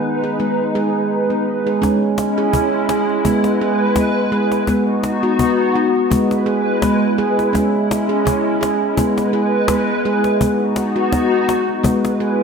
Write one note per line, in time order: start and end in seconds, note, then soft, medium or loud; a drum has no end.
0.00 0.23 D#3 medium
0.00 1.78 G#3 medium
0.00 1.78 D#4 medium
0.00 1.78 B4 medium
0.24 0.40 G#4 medium
0.40 0.70 G#3 medium
0.40 0.75 B3 medium
0.75 1.66 G#3 medium
0.75 1.11 G#4 medium
1.30 1.66 B3 medium
1.67 1.83 G#4 medium
1.82 3.03 G#3 medium
1.82 4.66 G#3 medium
1.82 2.18 C#4 medium
1.82 3.24 C#4 medium
1.82 4.66 E4 medium
1.82 cajon bass soft
1.82 cajon slap soft
2.02 cajon slap soft
2.18 cajon slap soft
2.38 2.54 G#4 medium
2.53 2.89 C#4 medium
2.53 cajon bass medium
2.89 3.25 G#4 medium
2.89 cajon slap soft
3.09 cajon slap soft
3.25 3.86 G#3 medium
3.25 3.61 B3 medium
3.25 4.67 B4 medium
3.25 cajon bass soft
3.44 cajon slap soft
3.60 3.97 G#4 medium
3.60 cajon slap soft
3.96 4.13 G#3 medium
3.96 4.33 B3 medium
3.96 cajon bass soft
3.96 cajon slap soft
4.32 4.62 G#3 medium
4.32 4.68 G#4 medium
4.52 cajon slap soft
4.67 5.89 G#3 medium
4.67 5.04 B3 medium
4.67 6.11 B3 medium
4.67 6.10 D#4 medium
4.67 6.10 F#4 medium
4.67 cajon bass soft
4.67 cajon slap soft
4.87 cajon slap soft
5.03 cajon slap soft
5.23 5.39 F#4 medium
5.39 5.75 B3 medium
5.39 cajon bass soft
5.76 6.11 F#4 medium
5.96 cajon slap soft
6.11 6.72 G#3 medium
6.11 7.54 G#3 medium
6.11 6.47 B3 medium
6.11 10.38 E4 medium
6.11 7.53 B4 medium
6.11 cajon bass medium
6.31 cajon slap soft
6.46 6.82 G#4 medium
6.46 cajon slap soft
6.82 6.99 G#3 medium
6.82 7.18 B3 medium
6.82 cajon bass soft
6.82 cajon slap medium
7.18 7.49 G#3 medium
7.18 7.54 G#4 medium
7.39 cajon slap soft
7.53 8.76 G#3 medium
7.53 8.96 G#3 medium
7.53 7.90 C#4 medium
7.53 8.96 C#4 medium
7.53 cajon bass soft
7.53 cajon slap soft
7.75 cajon slap soft
7.91 cajon slap medium
8.09 8.26 G#4 medium
8.25 8.62 C#4 medium
8.25 cajon bass medium
8.61 8.97 G#4 medium
8.61 cajon slap medium
8.82 cajon slap soft
8.97 10.39 G#3 medium
8.97 9.58 G#3 medium
8.97 9.34 B3 medium
8.97 10.40 B4 medium
8.97 cajon bass medium
9.18 cajon slap soft
9.33 9.69 G#4 medium
9.33 cajon slap soft
9.68 9.86 G#3 medium
9.68 10.05 B3 medium
9.68 cajon bass medium
9.68 cajon slap medium
10.05 10.36 G#3 medium
10.05 10.41 G#4 medium
10.24 cajon slap soft
10.40 11.62 G#3 medium
10.40 10.77 B3 medium
10.40 11.83 B3 medium
10.40 11.83 D#4 medium
10.40 11.83 F#4 loud
10.40 cajon bass medium
10.60 cajon slap soft
10.76 cajon slap medium
10.96 11.12 F#4 medium
11.12 11.48 B3 medium
11.12 cajon bass medium
11.12 cajon slap soft
11.33 cajon slap soft
11.48 11.84 F#4 medium
11.48 cajon slap soft
11.69 cajon slap soft
11.83 12.43 G#3 medium
11.83 12.20 B3 medium
11.83 12.43 E4 medium
11.83 12.43 B4 medium
11.83 cajon bass medium
12.05 cajon slap soft
12.20 12.43 G#4 medium
12.20 cajon slap soft